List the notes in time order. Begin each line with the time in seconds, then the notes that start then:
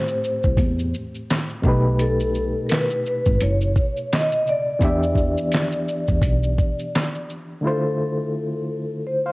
Already playing: A2 A3 C4 G4 C5
0.08 shaker
0.24 shaker
0.43 C2, kick, shaker
0.57 E2, kick, closed hi-hat, shaker
0.79 shaker
0.94 shaker
1.15 shaker
1.30 snare, clap, closed hi-hat, shaker
1.49 shaker
1.62 B1 B2 A3 D#4, kick, shaker
1.67 G4 B4
1.99 A4, closed hi-hat, shaker
2.20 shaker
2.35 shaker
2.67 A#4, closed hi-hat, shaker
2.72 B4, snare, clap
2.90 shaker
3.06 B4, shaker
3.25 G#1, kick, shaker
3.40 F#1 C#5, closed hi-hat, shaker
3.61 shaker
3.76 kick, shaker
3.97 shaker
4.13 D#5, snare, clap, closed hi-hat, shaker
4.32 shaker
4.47 D5, shaker
4.79 E2 E3 B3 D4, kick, closed hi-hat, shaker
4.84 G4 E5
5.03 shaker
5.15 kick, shaker
5.37 shaker
5.52 snare, clap, closed hi-hat, shaker
5.72 shaker
5.88 shaker
6.08 E2, kick, shaker
6.22 B1, kick, closed hi-hat, shaker
6.43 shaker
6.58 kick, shaker
6.79 shaker
6.95 snare, clap, closed hi-hat, shaker
7.14 shaker
7.30 shaker
7.61 D3 A3 E4
7.65 F4 A4 C5
9.07 C5
9.26 C5 F5